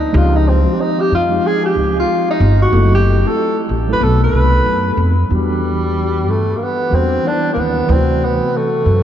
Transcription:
0.00 0.18 D#4 medium
0.13 0.64 C#2 loud
0.13 0.57 F3 medium
0.13 0.57 G#3 medium
0.13 0.57 C4 medium
0.13 0.58 D#4 medium
0.13 0.37 F4 medium
0.13 0.58 G4 medium
0.36 0.50 D#4 medium
0.49 0.82 C4 medium
0.63 1.18 F3 medium
0.63 1.18 G#3 medium
0.63 1.19 C4 medium
0.63 1.19 D#4 medium
0.63 0.71 F#4 medium
0.72 1.22 G4 medium
0.81 1.02 D#4 loud
1.00 1.12 G4 loud
1.11 1.36 F2 medium
1.11 1.48 F4 loud
1.29 2.37 F3 medium
1.29 2.38 G#3 medium
1.29 2.38 C4 medium
1.29 2.38 D#4 medium
1.29 2.38 G4 medium
1.46 1.64 G#4 loud
1.65 1.94 G4 medium
1.76 2.01 C#2 medium
1.99 2.27 F4 medium
2.30 2.59 D#4 loud
2.40 2.65 G1 loud
2.62 2.91 F#4 medium
2.71 3.22 F#1 loud
2.71 3.15 F#3 medium
2.71 3.15 A3 medium
2.71 3.16 C4 medium
2.71 3.16 E4 medium
2.71 3.16 A4 medium
2.95 3.29 G4 loud
3.24 3.77 F#3 medium
3.24 3.77 A3 medium
3.24 3.78 C4 medium
3.24 3.78 E4 medium
3.24 3.78 A4 medium
3.24 3.58 A4 loud
3.69 3.94 A1 medium
3.88 3.99 F#3 medium
3.88 3.99 A3 medium
3.88 4.02 C4 medium
3.88 4.02 E4 medium
3.88 4.01 A4 loud
3.93 4.05 B4 loud
4.00 4.26 B1 loud
4.00 5.14 F#3 medium
4.00 5.14 A3 medium
4.00 5.14 B3 medium
4.00 5.15 D#4 medium
4.00 5.15 A4 medium
4.00 4.22 A4 loud
4.24 5.15 B4 loud
4.33 4.58 C2 medium
4.66 4.91 F#2 medium
4.97 5.23 F2 loud
5.29 6.27 E2 loud
5.29 6.43 E3 medium
5.29 6.43 G3 medium
5.29 6.43 B3 medium
5.29 6.44 D4 medium
5.29 6.44 F#4 medium
5.35 6.32 G3 medium
6.27 6.52 G2 medium
6.27 6.58 A3 medium
6.56 6.65 A#3 medium
6.64 6.96 B3 medium
6.90 7.17 E2 medium
6.90 7.19 E3 medium
6.90 7.19 G3 medium
6.90 7.20 B3 medium
6.90 7.20 D4 medium
6.90 7.20 F#4 medium
6.94 7.29 C4 loud
7.23 7.81 E3 medium
7.23 7.81 G3 medium
7.23 7.81 B3 medium
7.23 7.82 D4 medium
7.23 7.52 D4 loud
7.23 7.33 D#4 medium
7.32 7.85 E4 medium
7.53 7.81 D#2 medium
7.53 7.61 A#3 medium
7.60 7.93 B3 medium
7.87 8.39 D2 loud
7.87 9.02 C3 medium
7.87 9.01 E3 medium
7.87 9.02 A3 medium
7.87 7.97 E4 medium
7.87 9.02 B4 medium
7.92 8.26 C4 medium
7.96 9.03 F#4 medium
8.25 8.58 B3 medium
8.56 9.03 A3 medium
8.86 9.03 F#2 medium

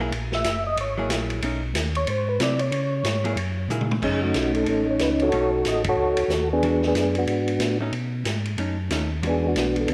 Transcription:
0.00 0.11 B1 medium
0.00 0.12 F#3 medium
0.00 0.12 A#3 medium
0.00 0.12 E4 medium
0.00 0.12 G#4 medium
0.11 0.44 A#1 medium
0.11 ride medium
0.32 0.64 E5 loud
0.32 snare medium
0.44 0.76 F#1 loud
0.44 snare medium
0.44 hi-hat pedal medium
0.44 ride medium
0.67 0.78 D#5 loud
0.76 1.09 G#1 medium
0.76 ride medium
0.81 1.10 C#5 medium
0.98 1.40 F#3 medium
0.98 1.41 A#3 medium
0.98 1.41 E4 medium
0.98 1.41 G#4 medium
1.09 1.41 A#1 medium
1.09 snare medium
1.09 hi-hat pedal medium
1.09 ride medium
1.30 ride medium
1.42 1.74 B1 medium
1.42 1.61 A3 medium
1.42 1.61 C#4 medium
1.42 1.61 D#4 medium
1.42 ride medium
1.74 2.06 D#2 loud
1.74 snare medium
1.74 hi-hat pedal medium
1.74 ride medium
1.95 2.08 C#5 loud
1.95 ride soft
2.07 2.39 G#2 medium
2.07 2.28 C5 medium
2.07 ride medium
2.29 2.40 B4 loud
2.40 2.71 C3 medium
2.40 2.58 F#3 medium
2.40 2.58 C4 medium
2.40 2.59 E4 medium
2.40 2.61 D5 loud
2.40 snare medium
2.40 hi-hat pedal medium
2.40 ride medium
2.59 3.33 C#5 loud
2.59 ride medium
2.71 3.03 C#3 medium
2.71 ride medium
3.04 3.36 G#2 loud
3.04 snare medium
3.04 hi-hat pedal medium
3.04 ride medium
3.24 3.36 F#3 medium
3.24 3.36 A#3 medium
3.24 3.36 E4 medium
3.24 3.36 G#4 medium
3.24 ride soft
3.36 3.68 F#2 medium
3.36 ride medium
3.68 4.01 A#2 medium
3.68 3.88 F#3 medium
3.68 3.88 A#3 medium
3.68 3.88 E4 medium
3.68 3.89 G#4 medium
3.68 hi-hat pedal medium
3.68 mid tom medium
3.81 mid tom medium
3.91 mid tom medium
4.02 4.34 F#2 medium
4.02 4.92 A3 medium
4.02 4.93 C#4 medium
4.02 4.64 C#4 medium
4.02 4.93 D#4 medium
4.02 4.22 D#4 medium
4.02 4.21 G#4 medium
4.02 kick medium
4.02 crash medium
4.23 4.84 A3 medium
4.23 4.68 D#4 medium
4.23 4.53 F#4 medium
4.34 4.66 B1 medium
4.34 snare medium
4.34 hi-hat pedal medium
4.34 ride medium
4.55 4.67 A4 medium
4.55 ride soft
4.66 4.99 A1 medium
4.66 5.30 C#4 medium
4.66 5.29 D#4 medium
4.66 4.87 A4 medium
4.66 ride medium
4.90 5.02 C#5 medium
4.99 5.31 C#2 medium
4.99 5.10 B4 medium
4.99 snare medium
4.99 hi-hat pedal medium
4.99 ride medium
5.20 5.83 F#4 medium
5.20 5.83 A4 medium
5.20 5.51 C#5 loud
5.20 ride soft
5.32 5.64 B1 medium
5.32 6.23 A3 medium
5.32 6.23 C#4 medium
5.32 6.24 D#4 medium
5.32 ride medium
5.65 5.97 A1 medium
5.65 5.85 D#5 medium
5.65 snare medium
5.65 hi-hat pedal medium
5.65 ride medium
5.84 kick medium
5.84 ride medium
5.89 6.48 F#4 medium
5.89 6.30 A4 medium
5.89 6.34 C#5 loud
5.97 6.16 C#2 medium
6.17 6.23 C#2 soft
6.17 ride medium
6.28 6.61 D#2 medium
6.28 6.50 A4 medium
6.28 snare medium
6.28 hi-hat pedal medium
6.53 6.86 B3 medium
6.53 6.86 D4 medium
6.53 6.85 G#4 medium
6.62 6.94 E2 medium
6.62 6.81 E3 medium
6.62 6.81 G#3 medium
6.62 6.81 D4 medium
6.62 6.81 F#4 medium
6.62 ride medium
6.82 snare soft
6.87 7.17 B3 medium
6.87 7.17 D4 medium
6.87 7.16 G#4 loud
6.94 7.26 F#2 medium
6.94 snare medium
6.94 hi-hat pedal medium
6.94 ride medium
7.15 7.78 B3 medium
7.15 7.78 D4 medium
7.15 7.78 F#4 medium
7.15 ride soft
7.27 7.59 G#2 medium
7.27 ride medium
7.48 ride soft
7.59 7.91 A2 medium
7.59 snare medium
7.59 hi-hat pedal medium
7.59 ride medium
7.80 7.92 A3 medium
7.80 7.92 C#4 medium
7.80 7.93 D#4 medium
7.92 8.24 B2 medium
7.92 ride medium
8.25 8.57 G#2 medium
8.25 snare medium
8.25 hi-hat pedal medium
8.25 ride medium
8.45 ride soft
8.58 8.90 F#2 medium
8.58 8.76 A3 medium
8.58 8.77 C#4 medium
8.58 8.77 D#4 medium
8.58 ride medium
8.90 9.22 D#2 medium
8.90 9.09 A3 medium
8.90 9.09 C#4 medium
8.90 9.09 D#4 medium
8.90 snare medium
8.90 hi-hat pedal soft
8.90 ride medium
9.22 9.54 E2 medium
9.22 9.94 E3 medium
9.22 9.94 G#3 medium
9.22 9.94 D4 medium
9.22 9.94 F#4 medium
9.22 ride medium
9.27 9.46 B3 medium
9.27 9.46 D4 medium
9.27 9.47 G#4 medium
9.47 9.94 B3 medium
9.47 9.90 D4 medium
9.47 9.76 F#4 medium
9.54 9.87 B1 medium
9.54 snare medium
9.54 hi-hat pedal medium
9.54 ride medium
9.76 ride soft
9.80 9.90 A4 medium
9.87 9.94 D2 medium
9.87 ride medium

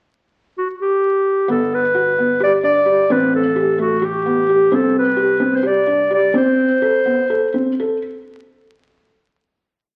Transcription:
0.58 0.68 F#4 medium
0.82 1.46 G4 medium
1.48 3.07 G1 medium
1.48 1.81 B3 medium
1.48 1.76 A4 medium
1.74 2.42 B4 medium
1.95 2.11 F#4 medium
2.18 2.35 B3 medium
2.40 2.57 G4 medium
2.40 2.53 D5 medium
2.63 2.80 D4 medium
2.63 3.13 D5 medium
2.86 3.03 G4 medium
3.10 4.69 A1 medium
3.10 3.43 C4 medium
3.10 3.34 B4 medium
3.35 3.77 A4 medium
3.56 3.72 G4 medium
3.79 3.95 A3 medium
3.79 4.07 F#4 medium
4.02 4.18 G4 medium
4.02 4.76 G4 medium
4.26 4.42 B3 medium
4.49 4.65 G4 medium
4.72 6.31 C2 medium
4.72 5.04 C4 medium
4.72 4.96 A4 medium
4.98 5.57 B4 medium
5.17 5.33 G4 medium
5.40 5.57 C4 medium
5.56 5.68 C5 medium
5.63 5.80 G4 medium
5.63 6.12 D5 medium
5.87 6.04 D4 medium
6.10 6.27 G4 medium
6.10 6.35 D5 medium
6.34 6.68 C4 medium
6.34 7.76 C5 medium
6.82 6.99 A4 medium
7.06 7.23 B3 medium
7.30 7.47 A4 medium
7.54 7.72 C4 medium
7.80 7.97 A4 medium

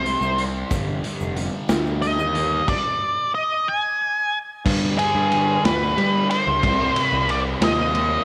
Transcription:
0.00 0.14 C2 loud
0.00 0.69 C3 medium
0.00 0.42 C5 medium
0.05 0.39 G3 medium
0.05 0.36 C4 medium
0.05 closed hi-hat medium
0.05 shaker soft
0.21 0.63 C2 medium
0.21 shaker medium
0.38 0.72 G3 medium
0.38 0.69 C4 medium
0.38 closed hi-hat medium
0.70 0.99 G1 medium
0.70 1.34 G2 medium
0.70 1.05 D3 medium
0.70 1.03 G3 loud
0.70 kick loud
0.70 closed hi-hat medium
0.70 shaker loud
1.04 1.36 D3 medium
1.04 1.36 G3 medium
1.04 closed hi-hat medium
1.20 1.48 F1 medium
1.20 shaker medium
1.36 1.99 G2 medium
1.36 1.69 D3 medium
1.36 1.67 G3 medium
1.36 closed hi-hat medium
1.68 2.18 D2 loud
1.68 2.01 D3 medium
1.68 2.02 G3 medium
1.68 snare loud
1.68 closed hi-hat medium
1.68 shaker medium
1.86 shaker soft
2.00 2.65 G2 medium
2.00 2.36 D3 medium
2.00 2.33 G3 medium
2.00 2.68 D#5 medium
2.00 closed hi-hat medium
2.00 shaker soft
2.18 2.60 D#2 medium
2.18 shaker medium
2.35 2.67 D3 medium
2.35 2.66 G3 medium
2.35 closed hi-hat medium
2.68 3.30 D5 loud
2.68 kick loud
2.68 crash loud
3.35 3.68 D#5 medium
3.68 4.38 G#5 loud
4.65 5.30 G2 medium
4.65 4.93 G2 medium
4.65 5.00 D3 loud
4.65 4.99 G3 loud
4.65 kick loud
4.65 crash loud
4.98 5.31 D3 medium
4.98 5.33 G3 medium
4.98 5.65 G#4 medium
4.98 ride medium
5.15 5.56 G2 medium
5.31 5.64 G2 medium
5.31 5.64 D3 medium
5.31 5.63 G3 medium
5.31 ride medium
5.64 5.92 D2 loud
5.64 5.95 G2 medium
5.64 5.97 D3 medium
5.64 5.99 G3 medium
5.64 6.27 B4 medium
5.64 snare loud
5.64 ride loud
5.96 6.61 G2 medium
5.96 6.61 D3 medium
5.96 6.25 G3 loud
5.96 6.64 G3 medium
5.96 ride medium
6.31 6.99 C5 loud
6.31 ride medium
6.47 6.60 C#2 medium
6.63 6.91 C2 loud
6.63 7.27 C3 medium
6.63 6.98 G3 loud
6.63 6.95 C4 loud
6.63 kick loud
6.63 ride loud
6.96 7.29 G3 medium
6.96 7.29 C4 medium
6.96 7.32 B4 loud
6.96 ride medium
7.12 7.54 C2 medium
7.28 7.62 C3 medium
7.28 7.61 G3 medium
7.28 7.59 C4 medium
7.28 7.39 D5 loud
7.28 ride medium
7.61 8.16 D#2 loud
7.61 7.93 C3 medium
7.61 7.95 G3 medium
7.61 7.95 C4 medium
7.61 8.24 D#5 loud
7.61 snare loud
7.61 ride loud
7.94 8.24 C3 medium
7.94 8.24 G3 medium
7.94 8.24 C4 medium
7.94 ride medium

